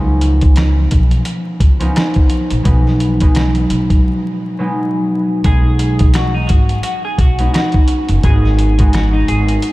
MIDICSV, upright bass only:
0, 0, Header, 1, 2, 480
1, 0, Start_track
1, 0, Tempo, 697674
1, 1827, Time_signature, 4, 2, 24, 8
1, 6691, End_track
2, 0, Start_track
2, 0, Title_t, "Upright bass"
2, 0, Program_c, 0, 32
2, 0, Note_on_c, 0, 37, 106
2, 600, Note_off_c, 0, 37, 0
2, 634, Note_on_c, 0, 35, 86
2, 822, Note_off_c, 0, 35, 0
2, 1103, Note_on_c, 0, 37, 87
2, 1295, Note_off_c, 0, 37, 0
2, 1726, Note_on_c, 0, 34, 89
2, 1806, Note_off_c, 0, 34, 0
2, 1827, Note_on_c, 0, 35, 106
2, 2520, Note_off_c, 0, 35, 0
2, 2547, Note_on_c, 0, 35, 89
2, 2738, Note_off_c, 0, 35, 0
2, 3747, Note_on_c, 0, 35, 108
2, 4439, Note_off_c, 0, 35, 0
2, 4473, Note_on_c, 0, 32, 94
2, 4661, Note_off_c, 0, 32, 0
2, 4943, Note_on_c, 0, 35, 99
2, 5135, Note_off_c, 0, 35, 0
2, 5568, Note_on_c, 0, 30, 87
2, 5647, Note_off_c, 0, 30, 0
2, 5667, Note_on_c, 0, 32, 117
2, 6360, Note_off_c, 0, 32, 0
2, 6388, Note_on_c, 0, 32, 94
2, 6578, Note_off_c, 0, 32, 0
2, 6691, End_track
0, 0, End_of_file